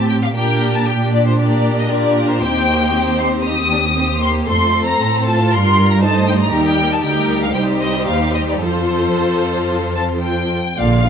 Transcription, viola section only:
0.00 0.36 C4 soft
0.36 0.88 A#3 soft
0.36 0.86 D4 soft
0.88 2.41 D4 soft
1.39 1.90 A#3 soft
1.91 2.44 F4 soft
2.44 2.69 C4 soft
2.44 3.45 D#4 soft
2.70 2.95 A#3 soft
2.95 3.96 C4 soft
3.46 3.54 D#4 soft
3.71 3.79 D4 soft
3.97 4.05 C4 soft
4.22 4.48 A#3 medium
4.48 5.01 A3 soft
5.02 5.27 C4 soft
5.28 6.03 F4 soft
5.53 6.03 G3 soft
6.04 6.54 A3 soft
6.04 6.53 D#4 soft
6.54 7.02 G3 soft
6.54 7.01 D#4 soft
7.05 7.55 G3 soft
7.05 7.55 D#4 soft
7.56 8.61 G3 soft
7.56 8.61 D#4 soft
8.63 10.58 F3 soft
8.63 10.58 F4 soft
10.79 11.03 D3 soft
10.79 11.03 F4 soft
11.06 11.09 F3 soft
11.06 11.09 D4 soft

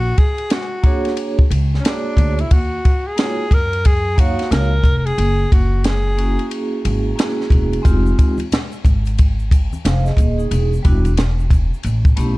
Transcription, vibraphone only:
0.83 1.34 A#3 medium
0.83 1.34 D4 medium
0.83 1.35 F#4 medium
0.83 1.35 G#4 medium
0.83 1.35 C#5 medium
1.83 2.34 A#3 medium
1.83 2.34 D4 medium
1.83 2.35 F#4 medium
1.83 2.35 G#4 medium
1.83 2.36 C#5 medium
3.16 3.43 A#3 medium
3.16 3.43 D#4 medium
3.16 3.44 F4 medium
3.16 3.44 F#4 medium
3.16 3.45 C#5 medium
4.16 4.67 A#3 medium
4.16 4.67 D#4 medium
4.16 4.68 F#4 medium
4.16 4.69 C#5 medium
4.16 4.68 F5 medium
6.17 7.13 A#3 medium
6.17 7.13 C#4 medium
6.17 7.14 E4 medium
6.17 7.14 F#4 medium
6.17 7.14 G#4 medium
7.16 7.84 A#3 medium
7.16 7.84 C#4 medium
7.16 7.84 E4 medium
7.16 7.85 F#4 medium
7.16 7.85 G#4 medium
7.82 8.33 G#3 medium
7.82 8.34 C4 medium
7.82 8.34 D#4 medium
7.82 8.35 F4 medium
7.82 8.35 G4 medium
9.85 10.04 C5 medium
9.85 10.04 F5 medium
10.05 10.37 G#4 medium
10.05 10.37 D#5 medium
10.38 10.70 D#4 medium
10.38 10.70 G#4 medium
10.83 11.10 G3 medium
10.83 11.10 B3 medium
10.83 11.11 D4 medium
10.83 11.11 E4 medium
10.83 11.11 F#4 medium
12.16 12.38 A3 medium
12.16 12.38 B3 medium
12.16 12.38 C#4 medium
12.16 12.38 E4 medium
12.16 12.38 G4 medium

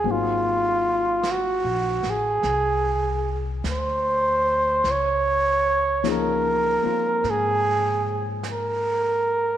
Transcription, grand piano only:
0.04 4.84 F#3 soft
0.04 4.84 A#3 soft
0.04 4.85 C4 soft
0.04 4.86 D#4 soft
0.09 4.86 G#4 soft
6.04 9.57 F3 soft
6.04 6.81 A#3 soft
6.04 9.57 C#4 soft
6.04 9.57 D#4 soft
6.04 9.57 G#4 soft
6.83 9.57 A#3 soft
6.83 9.57 C4 soft
6.83 9.57 F4 soft

